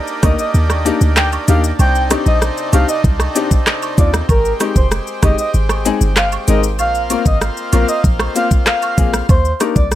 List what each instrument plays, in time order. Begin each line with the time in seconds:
Already playing: accordion A#3 D4 D#4 G4
0.07 shaker
0.23 808-style bass D2, grand piano A#3 D4 D#4 A#4, soft synth lead D#5, kick, cross-stick, closed hi-hat, cabasa, high woodblock, shaker
0.39 soft synth lead D#5, shaker
0.54 808-style bass D#2, shaker
0.70 cross-stick, high woodblock, shaker
0.85 grand piano A#3 D4 D#4 G4, closed hi-hat, cabasa, shaker
1.01 808-style bass D2, shaker
1.16 soft synth lead G5, cross-stick, clap, shaker
1.32 high woodblock, shaker
1.48 808-style bass D#2, grand piano A#3 D4 D#4 G4, soft synth lead F5, closed hi-hat, cabasa, shaker
1.64 shaker
1.79 808-style bass C2, accordion C3 C4 D#4, soft synth lead G5, high woodblock, shaker
1.95 shaker
2.10 grand piano C4 D4 D#4 G4, cross-stick, closed hi-hat, cabasa, high woodblock, shaker
2.26 808-style bass A#1, soft synth lead D#5, shaker
2.42 cross-stick, shaker
2.57 shaker
2.72 808-style bass C2, grand piano C4 D4 D#4 G4, soft synth lead F5, closed hi-hat, cabasa, high woodblock, shaker
2.89 soft synth lead D#5, shaker
3.04 808-style bass C2, kick, shaker
3.20 cross-stick, high woodblock, shaker
3.35 grand piano C4 D4 D#4 G4, closed hi-hat, cabasa, shaker
3.51 kick, shaker
3.67 cross-stick, clap, shaker
3.82 high woodblock, shaker
3.97 808-style bass D#2, grand piano C4 D4 D#4 F4, soft synth lead D5, kick, closed hi-hat, cabasa, shaker
4.14 cross-stick, shaker
4.29 808-style bass G#1, accordion G#3 G4, soft synth lead A#4, kick, high woodblock, shaker
4.45 shaker
4.60 grand piano G#3 C4 D#4 G4, cross-stick, closed hi-hat, cabasa, high woodblock, shaker
4.76 808-style bass F1, soft synth lead C5, kick, shaker
4.91 cross-stick, shaker
5.07 shaker
5.22 808-style bass G1, grand piano G#3 C4 D#4 G4, soft synth lead D#5, kick, cross-stick, closed hi-hat, cabasa, high woodblock, shaker
5.38 soft synth lead D#5, shaker
5.54 808-style bass G#1, shaker
5.69 cross-stick, high woodblock, shaker
5.85 grand piano G#3 C4 D#4 G#4, closed hi-hat, cabasa, shaker
6.01 808-style bass G1, shaker
6.16 soft synth lead F5, cross-stick, clap, shaker
6.32 high woodblock, shaker
6.47 808-style bass G#1, grand piano G#3 C4 D#4 A#4, soft synth lead D#5, closed hi-hat, cabasa, shaker
6.63 shaker
6.79 808-style bass A#1, accordion A#3 F4, soft synth lead F5, high woodblock, shaker
6.95 shaker
7.10 grand piano A#3 C4 F4 A#4, closed hi-hat, cabasa, high woodblock, shaker
7.26 808-style bass G#1, soft synth lead D#5, kick, shaker
7.41 cross-stick, shaker
7.57 shaker
7.72 808-style bass A#1, grand piano A#3 C4 F4 A#4, soft synth lead F5, closed hi-hat, cabasa, high woodblock, shaker
7.88 soft synth lead D#5, shaker
8.04 808-style bass A#1, kick, shaker
8.19 cross-stick, high woodblock, shaker
8.35 grand piano A#3 C4 F4 C5, soft synth lead F5, closed hi-hat, cabasa, shaker
8.51 kick, shaker
8.66 soft synth lead F5, cross-stick, clap, shaker
8.82 high woodblock, shaker
8.97 808-style bass A#1, grand piano A#3 C4 F4 G#4, kick, closed hi-hat, cabasa, shaker
9.14 cross-stick, shaker
9.29 808-style bass D#2, soft synth lead C5, kick, high woodblock, shaker
9.45 shaker
9.60 grand piano A#3 D4 D#4 G4 A#4, cross-stick, closed hi-hat, cabasa, high woodblock, shaker
9.76 808-style bass C2, soft synth lead D5, kick, shaker
9.92 cross-stick, shaker